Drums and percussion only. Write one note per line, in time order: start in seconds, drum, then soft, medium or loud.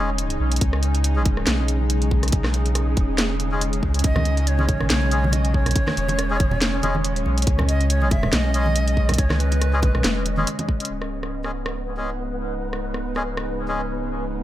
0.18 closed hi-hat medium
0.30 closed hi-hat soft
0.52 closed hi-hat medium
0.56 closed hi-hat medium
0.61 kick loud
0.61 closed hi-hat medium
0.73 cross-stick medium
0.83 closed hi-hat soft
0.95 closed hi-hat soft
1.04 closed hi-hat medium
1.25 kick loud
1.25 closed hi-hat medium
1.37 cross-stick medium
1.47 snare loud
1.47 closed hi-hat medium
1.68 closed hi-hat medium
1.90 closed hi-hat medium
2.02 closed hi-hat soft
2.11 kick medium
2.23 cross-stick medium
2.23 closed hi-hat soft
2.28 closed hi-hat medium
2.32 kick loud
2.32 closed hi-hat medium
2.44 cross-stick medium
2.44 snare soft
2.54 closed hi-hat soft
2.66 closed hi-hat soft
2.75 cross-stick medium
2.75 closed hi-hat medium
2.97 kick loud
2.97 closed hi-hat soft
3.18 snare loud
3.18 closed hi-hat medium
3.40 closed hi-hat soft
3.61 closed hi-hat medium
3.73 closed hi-hat soft
3.83 kick medium
3.94 closed hi-hat soft
3.99 closed hi-hat medium
4.04 kick loud
4.04 closed hi-hat medium
4.16 cross-stick medium
4.16 high conga medium
4.16 low conga medium
4.25 closed hi-hat soft
4.25 muted conga medium
4.37 closed hi-hat soft
4.47 closed hi-hat medium
4.59 muted conga medium
4.68 kick loud
4.68 closed hi-hat medium
4.68 high conga medium
4.81 cross-stick medium
4.81 low conga medium
4.90 snare loud
4.90 closed hi-hat medium
5.02 muted conga soft
5.11 closed hi-hat soft
5.24 high conga medium
5.32 closed hi-hat medium
5.32 muted conga medium
5.45 closed hi-hat soft
5.54 kick medium
5.66 cross-stick medium
5.66 closed hi-hat soft
5.66 low conga medium
5.71 closed hi-hat medium
5.76 kick loud
5.76 closed hi-hat medium
5.76 muted conga medium
5.87 cross-stick medium
5.87 snare soft
5.87 high conga medium
5.97 closed hi-hat soft
6.09 closed hi-hat soft
6.09 muted conga medium
6.19 cross-stick medium
6.19 closed hi-hat medium
6.40 kick loud
6.40 closed hi-hat soft
6.40 high conga medium
6.51 muted conga medium
6.51 low conga medium
6.62 snare loud
6.62 closed hi-hat medium
6.83 closed hi-hat soft
6.83 muted conga medium
6.95 high conga medium
7.05 closed hi-hat medium
7.16 closed hi-hat soft
7.26 muted conga soft
7.38 closed hi-hat soft
7.42 closed hi-hat medium
7.47 kick loud
7.47 closed hi-hat medium
7.58 cross-stick medium
7.58 muted conga medium
7.58 high conga medium
7.58 low conga medium
7.69 closed hi-hat soft
7.81 closed hi-hat soft
7.90 closed hi-hat medium
8.02 muted conga medium
8.11 kick loud
8.11 closed hi-hat medium
8.11 high conga medium
8.23 cross-stick medium
8.23 low conga medium
8.33 snare loud
8.33 closed hi-hat medium
8.33 muted conga medium
8.54 closed hi-hat medium
8.66 high conga medium
8.75 closed hi-hat medium
8.75 muted conga soft
8.88 closed hi-hat soft
8.97 kick medium
9.09 cross-stick medium
9.09 closed hi-hat soft
9.09 muted conga medium
9.09 low conga medium
9.14 closed hi-hat medium
9.18 kick loud
9.18 closed hi-hat medium
9.30 cross-stick medium
9.30 snare soft
9.30 high conga medium
9.40 closed hi-hat medium
9.52 closed hi-hat soft
9.52 muted conga medium
9.62 cross-stick medium
9.62 closed hi-hat medium
9.82 kick loud
9.82 closed hi-hat medium
9.82 muted conga medium
9.82 high conga medium
9.95 cross-stick medium
9.95 low conga medium
10.04 snare loud
10.04 closed hi-hat medium
10.26 closed hi-hat medium
10.26 muted conga soft
10.37 high conga medium
10.47 closed hi-hat medium
10.59 closed hi-hat soft
10.59 muted conga medium
10.69 kick medium
10.80 closed hi-hat soft
10.85 closed hi-hat medium
11.02 cross-stick medium
11.23 cross-stick soft
11.44 cross-stick soft
11.66 cross-stick medium
12.73 cross-stick soft
12.94 cross-stick soft
13.16 cross-stick soft
13.37 cross-stick medium